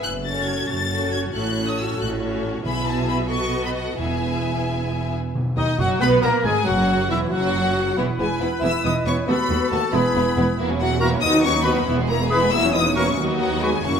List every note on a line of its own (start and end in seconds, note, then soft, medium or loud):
0.03 0.61 F#1 medium
0.03 0.61 F#2 medium
0.03 0.11 F#6 medium
0.25 0.89 C#4 soft
0.25 0.89 F#4 soft
0.25 0.89 A4 soft
0.25 0.89 C#5 soft
0.25 0.46 A6 medium
0.47 0.69 G#6 medium
0.68 1.26 F#1 medium
0.68 1.26 F#2 medium
0.68 1.11 A6 medium
0.90 1.33 C#4 soft
0.90 1.33 F#4 soft
0.90 1.31 A4 soft
0.90 1.31 C#5 soft
1.12 1.20 G#6 medium
1.32 1.91 A1 medium
1.32 1.91 A2 medium
1.32 1.54 C#4 soft
1.32 1.55 F#4 soft
1.32 1.53 A4 soft
1.32 1.52 C#5 soft
1.32 1.66 F#6 medium
1.53 2.19 C#4 soft
1.53 2.20 F#4 soft
1.53 2.18 A4 soft
1.53 2.19 C#5 soft
1.68 1.78 D#6 medium
1.78 1.99 E6 medium
1.98 2.57 A1 medium
1.98 2.57 A2 medium
1.98 2.09 F#6 medium
2.20 2.64 C#4 soft
2.20 2.64 F#4 soft
2.20 2.63 A4 soft
2.20 2.63 C#5 soft
2.65 3.95 B1 medium
2.65 3.95 B2 medium
2.65 3.27 B2 medium
2.65 3.27 B3 soft
2.65 3.27 E4 soft
2.65 3.27 G#4 medium
2.65 3.27 E5 medium
2.65 2.86 B5 medium
2.87 3.09 A5 medium
3.08 3.16 B5 medium
3.30 3.98 B3 medium
3.30 3.99 F#4 medium
3.30 3.99 A4 medium
3.30 3.99 D#5 medium
3.30 3.63 C#6 medium
3.65 3.70 B5 medium
3.77 3.99 F#5 medium
3.98 5.12 E1 medium
3.98 4.63 E2 medium
3.98 5.12 E2 medium
3.98 5.13 B3 soft
3.98 5.13 E4 soft
3.98 5.12 G#4 medium
3.98 5.12 E5 medium
3.98 5.10 G#5 medium
5.35 5.97 B2 medium
5.57 5.65 D#2 medium
5.57 5.65 D#3 medium
5.57 5.78 D#3 medium
5.57 5.77 D#4 medium
5.57 5.78 D#4 medium
5.57 5.67 D#5 medium
5.57 5.78 D#5 medium
5.78 5.87 F#1 medium
5.78 5.87 F#2 medium
5.78 6.00 F#3 medium
5.78 6.01 F#3 medium
5.78 6.01 F#4 medium
5.78 6.00 F#4 medium
5.78 6.01 F#4 medium
5.78 6.02 F#5 medium
5.78 5.88 F#5 medium
6.01 6.22 B1 medium
6.01 6.23 B2 medium
6.01 6.23 B3 medium
6.01 6.23 B4 medium
6.01 6.11 B4 medium
6.01 6.23 B4 medium
6.01 6.25 B5 medium
6.01 6.09 B5 medium
6.22 6.31 A#1 medium
6.22 6.31 A#2 medium
6.22 6.32 A#3 medium
6.22 6.45 A#3 medium
6.22 6.44 A#4 medium
6.22 6.31 A#5 medium
6.22 6.44 A#5 medium
6.44 6.52 G#1 medium
6.44 6.53 G#2 medium
6.44 6.54 G#3 medium
6.44 6.67 G#3 medium
6.44 6.66 G#4 medium
6.44 6.67 G#4 medium
6.44 6.66 G#5 medium
6.44 6.55 G#5 medium
6.65 7.09 F#1 medium
6.65 7.10 F#2 medium
6.65 7.10 F#3 medium
6.65 7.09 F#3 medium
6.65 7.10 F#4 medium
6.65 7.10 F#5 medium
7.10 7.32 E1 medium
7.10 7.32 E2 medium
7.10 7.32 E3 medium
7.10 7.33 E3 medium
7.10 7.18 E4 medium
7.10 7.33 E4 medium
7.10 7.32 E4 medium
7.10 7.18 E5 medium
7.10 7.21 E5 medium
7.31 7.96 F#1 medium
7.31 7.96 F#2 medium
7.31 7.96 F#3 medium
7.31 7.98 F#3 medium
7.31 7.96 F#4 medium
7.31 7.98 F#4 medium
7.31 7.97 F#4 medium
7.31 7.96 F#5 medium
7.97 8.06 E1 medium
7.97 8.05 E2 medium
7.97 8.06 E3 medium
7.97 8.05 B3 medium
7.97 8.05 E4 medium
7.97 9.24 E4 medium
7.97 9.24 B4 soft
8.18 8.28 E1 medium
8.18 8.27 E2 medium
8.18 8.27 E3 soft
8.18 8.29 G#3 medium
8.18 8.26 B3 soft
8.18 8.27 B3 soft
8.18 8.27 E4 soft
8.18 8.26 G#4 medium
8.18 8.40 G#5 medium
8.39 8.48 E1 medium
8.39 8.50 E2 medium
8.39 8.49 E3 soft
8.39 8.47 B3 medium
8.39 8.49 B3 medium
8.39 8.63 B3 medium
8.39 8.47 E4 medium
8.39 8.62 B4 medium
8.39 8.63 B5 medium
8.61 8.70 E1 medium
8.61 8.71 E2 medium
8.61 8.72 E3 medium
8.61 8.69 B3 medium
8.61 8.72 B3 medium
8.61 8.70 E4 medium
8.61 8.74 E4 medium
8.61 8.67 E5 medium
8.61 8.84 E6 medium
8.84 8.92 E1 medium
8.84 8.92 E2 medium
8.84 8.93 E3 medium
8.84 8.92 B3 soft
8.84 8.93 B3 soft
8.84 8.95 D#4 medium
8.84 8.92 E4 soft
8.84 9.05 D#5 medium
8.84 8.94 D#6 medium
9.05 9.14 E1 medium
9.05 9.14 E2 medium
9.05 9.16 E3 soft
9.05 9.14 B3 medium
9.05 9.16 B3 medium
9.05 9.28 C#4 medium
9.05 9.14 E4 soft
9.05 9.27 C#5 medium
9.05 9.15 C#6 medium
9.26 9.35 D#2 medium
9.26 9.36 D#2 medium
9.26 9.36 A3 medium
9.26 9.35 B3 medium
9.26 9.36 B3 medium
9.26 9.71 B3 medium
9.26 9.35 F#4 medium
9.26 9.96 F#4 medium
9.26 9.95 A4 medium
9.26 9.70 B4 medium
9.26 9.71 B5 medium
9.49 9.57 D#2 medium
9.49 9.58 D#2 medium
9.49 9.58 A3 soft
9.49 9.57 B3 medium
9.49 9.58 B3 medium
9.49 9.58 F#4 medium
9.71 9.80 D#2 medium
9.71 9.80 A3 medium
9.71 9.82 A3 medium
9.71 9.79 B3 medium
9.71 9.80 B3 soft
9.71 9.79 F#4 medium
9.71 9.93 A4 medium
9.71 9.92 A5 medium
9.92 10.02 E1 medium
9.92 10.01 E2 medium
9.92 10.01 G#3 medium
9.92 10.00 B3 medium
9.92 10.01 B3 medium
9.92 10.57 B3 medium
9.92 10.00 E4 medium
9.92 10.59 E4 medium
9.92 10.58 G#4 medium
9.92 10.56 B4 medium
9.92 10.58 B5 medium
10.15 10.23 E1 medium
10.15 10.23 E2 medium
10.15 10.24 G#3 medium
10.15 10.23 B3 medium
10.15 10.24 B3 medium
10.15 10.24 E4 soft
10.36 10.45 E1 medium
10.36 10.45 E2 medium
10.36 10.45 G#3 medium
10.36 10.45 B3 medium
10.36 10.44 E4 medium
10.58 11.17 E1 medium
10.58 11.17 E2 medium
10.58 10.68 E3 medium
10.58 10.69 A#3 medium
10.58 10.67 E4 medium
10.58 10.68 F#4 medium
10.68 10.79 F#3 soft
10.68 10.79 C#4 soft
10.68 10.80 C#4 soft
10.68 10.79 E4 soft
10.79 10.90 E3 soft
10.79 10.90 F#3 medium
10.79 10.90 A#3 medium
10.79 10.90 E4 soft
10.79 10.99 F#4 medium
10.79 10.90 F#4 medium
10.79 10.99 F#5 medium
10.91 11.01 F#3 soft
10.91 11.01 C#4 soft
10.91 11.01 C#4 medium
10.91 11.00 E4 medium
11.00 11.11 E3 medium
11.00 11.21 A#3 medium
11.00 11.11 A#3 medium
11.00 11.11 E4 medium
11.00 11.08 F#4 medium
11.00 11.10 F#4 medium
11.00 11.06 A#4 medium
11.00 11.08 A#4 medium
11.00 11.08 A#5 medium
11.11 11.22 F#3 medium
11.11 11.22 C#4 medium
11.11 11.22 E4 medium
11.21 11.86 D#2 medium
11.21 11.32 D#3 medium
11.21 11.32 B3 medium
11.21 11.31 D#4 medium
11.21 11.43 D#4 medium
11.21 11.32 F#4 medium
11.21 11.42 D#5 medium
11.21 11.42 D#6 loud
11.33 11.43 F#3 medium
11.33 11.43 B3 medium
11.33 11.43 D#4 medium
11.33 11.43 D#4 soft
11.43 11.54 D#3 medium
11.43 11.54 B3 medium
11.43 11.53 C#4 medium
11.43 11.53 D#4 soft
11.43 11.55 F#4 soft
11.43 11.64 C#5 medium
11.43 11.64 C#6 loud
11.54 11.65 F#3 medium
11.54 11.64 B3 soft
11.54 11.63 D#4 medium
11.54 11.65 D#4 medium
11.64 11.75 D#3 medium
11.64 11.74 B3 medium
11.64 11.75 B3 medium
11.64 11.74 D#4 medium
11.64 11.74 F#4 medium
11.64 11.72 F#4 medium
11.64 11.72 B4 medium
11.64 11.86 B4 medium
11.64 11.86 B5 medium
11.75 11.87 F#3 medium
11.75 11.86 B3 medium
11.75 11.86 D#4 medium
11.75 11.87 D#4 medium
11.86 13.15 E1 medium
11.86 13.15 E2 medium
11.86 11.97 E3 medium
11.86 11.97 B3 medium
11.86 11.96 E4 medium
11.98 12.09 G#3 medium
11.98 12.09 B3 soft
11.98 12.08 G#4 medium
12.08 12.19 E3 medium
12.08 12.29 A#3 medium
12.08 12.19 B3 medium
12.08 12.19 E4 medium
12.08 12.16 A#4 medium
12.08 12.29 A#5 medium
12.20 12.31 G#3 soft
12.20 12.30 B3 medium
12.20 12.30 G#4 medium
12.30 12.41 E3 medium
12.30 12.41 B3 medium
12.30 12.52 B3 medium
12.30 12.41 E4 medium
12.30 12.38 G#4 medium
12.30 12.38 B4 medium
12.30 12.52 B4 medium
12.30 12.52 B5 medium
12.41 12.52 G#3 medium
12.41 12.52 B3 soft
12.41 12.52 G#4 medium
12.51 12.63 E3 medium
12.51 12.63 A#3 medium
12.51 12.73 E4 medium
12.51 12.62 E4 medium
12.51 12.62 F#4 medium
12.51 12.59 E5 medium
12.51 12.74 E6 loud
12.63 12.74 F#3 medium
12.63 12.74 C#4 soft
12.63 12.75 C#4 soft
12.63 12.72 E4 soft
12.73 12.85 E3 medium
12.73 12.85 A#3 medium
12.73 12.95 D#4 medium
12.73 12.83 E4 soft
12.73 12.85 F#4 soft
12.73 12.79 D#5 medium
12.73 12.95 D#6 medium
12.84 12.96 F#3 medium
12.84 12.95 C#4 soft
12.84 12.96 C#4 soft
12.84 12.94 E4 soft
12.94 13.06 E3 medium
12.94 13.06 A#3 soft
12.94 13.18 C#4 medium
12.94 13.05 E4 medium
12.94 13.05 F#4 medium
12.94 13.03 F#4 medium
12.94 13.03 A#4 medium
12.94 13.16 C#5 medium
12.94 13.18 C#6 medium
13.06 13.18 F#3 medium
13.06 13.17 C#4 soft
13.06 13.18 C#4 soft
13.06 13.17 E4 soft
13.18 13.81 D#2 medium
13.18 13.81 F#3 medium
13.18 13.81 B3 medium
13.18 13.81 D#4 medium
13.18 13.81 F#4 medium
13.39 13.51 F#3 medium
13.39 13.60 F#4 medium
13.39 13.61 F#5 medium
13.61 13.72 G#3 medium
13.61 13.70 F#4 medium
13.61 13.84 G#4 medium
13.61 13.70 B4 medium
13.61 13.84 G#5 medium
13.84 14.00 F#1 medium
13.84 14.00 F#2 medium
13.84 14.00 F#3 medium
13.84 14.00 A#3 medium
13.84 14.00 C#4 medium
13.84 14.00 E4 medium
13.84 14.00 F#4 medium
13.84 14.00 C#5 medium
13.84 14.00 C#6 medium